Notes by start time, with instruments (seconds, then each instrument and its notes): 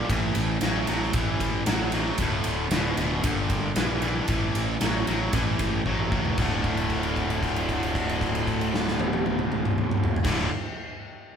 0.09 fingered electric bass A1, distorted electric guitar A2 E3, tonewheel organ C#4 G4 A4 C5, kick, ride
0.35 fingered electric bass A1, ride
0.61 fingered electric bass A1, distorted electric guitar A2 F#3, snare, ride
0.87 fingered electric bass A1, distorted electric guitar A2 F#3, ride
1.02 snare
1.13 fingered electric bass A1, distorted electric guitar A2 E3, kick, ride
1.40 fingered electric bass A1, kick, ride
1.66 fingered electric bass A1, distorted electric guitar A2 F#3, snare, ride
1.92 distorted electric guitar A2 F#3, ride
2.18 fingered electric bass D1, distorted electric guitar D2 A2, tonewheel organ D#4 F#4 A#4 C#5, kick, ride
2.36 tonewheel organ D4 F4 A4 C5
2.44 fingered electric bass D1, ride
2.71 fingered electric bass D1, distorted electric guitar D2 B2, snare, ride
2.97 fingered electric bass D1, distorted electric guitar D2 B2, ride
3.22 fingered electric bass G1, distorted electric guitar G2 D3, tonewheel organ D4 F4 G4 A#4, kick, ride
3.50 fingered electric bass G1, kick, snare, ride
3.75 fingered electric bass A#1, distorted electric guitar G2 E3, snare, ride
4.02 distorted electric guitar G2 E3, ride
4.28 fingered electric bass A1, distorted electric guitar A2 E3, tonewheel organ C#4 G4 A4 C5, kick, ride
4.55 fingered electric bass A1, ride
4.81 fingered electric bass A1, distorted electric guitar A2 F#3, snare, ride
5.07 fingered electric bass A1, distorted electric guitar A2 F#3, ride
5.33 fingered electric bass A1, distorted electric guitar A2 E3, kick, ride
5.59 fingered electric bass A1, kick, ride
5.86 fingered electric bass A1, distorted electric guitar A2 F#3, kick
5.99 mid tom
6.11 distorted electric guitar A2 F#3, kick
6.25 floor tom
6.37 fingered electric bass D1, distorted electric guitar D2 A2 D3, tonewheel organ D4 F4 A4 C5, kick, crash
6.64 kick, crash
6.77 crash
6.90 kick, crash
7.03 crash
7.16 kick, crash
7.30 crash
7.43 kick, crash
7.56 crash
7.69 kick, crash
7.83 crash
7.95 kick, crash
8.09 crash
8.21 kick, crash
8.35 crash
8.47 kick, crash
8.61 crash
8.74 snare
8.87 snare
8.99 high tom
9.13 high tom
9.26 high tom
9.39 mid tom
9.52 mid tom
9.65 mid tom
9.78 mid tom
9.91 mid tom
10.04 floor tom
10.16 floor tom
10.23 fingered electric bass D1, distorted electric guitar D2 A2, tonewheel organ D4 F4 A4 C5, kick, snare, crash
10.27 distorted electric guitar D3